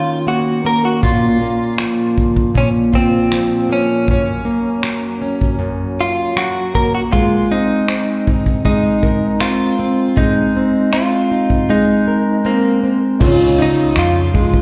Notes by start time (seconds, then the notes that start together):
Already playing: D#3 A#3 C#4 F4 A#4
0.27 A#3 F#4
0.65 A#3 A#4
0.85 F#4
1.03 A#2 F4, kick, shaker
1.41 A#3, shaker
1.78 F3, finger snap, shaker
2.18 kick, shaker
2.36 kick
2.55 A#2 C#4, kick, shaker
2.93 C4 F4, kick, shaker
3.32 F3, finger snap, shaker
3.69 A#3 C#4, shaker
4.07 F#2, kick, shaker
4.11 C#4
4.45 A#3, shaker
4.83 F#3, finger snap, shaker
5.22 C#4, shaker
5.41 kick, shaker
5.59 F#2, shaker
5.99 F4, shaker
6.36 F#3 F#4, finger snap, shaker
6.74 A#3 A#4, kick, shaker
6.95 F#4, shaker
7.12 G#3 F4, kick, shaker
7.50 C4 D#4, shaker
7.88 C4, finger snap, shaker
8.27 D#4, kick, shaker
8.46 kick, shaker
8.65 G#3 D#4, kick, shaker
9.03 A#4, kick, shaker
9.40 C4 F4, finger snap, shaker
9.78 C4, shaker
10.17 G#3 D#4, kick, shaker
10.54 C4, shaker
10.75 shaker
10.92 C4 F4, finger snap, shaker
11.31 D#4, shaker
11.50 kick, shaker
11.69 G#3 D#4
12.08 A#4
12.45 A#3 C4
12.83 C4
13.19 C#2 C#3 G#3 D#4 F4, kick, crash
13.24 C#5
13.57 C#2 D#4, shaker
13.62 D#4
13.78 shaker
13.96 F2 F3 F4, finger snap, shaker
14.34 C#2 G#3, kick, shaker
14.54 kick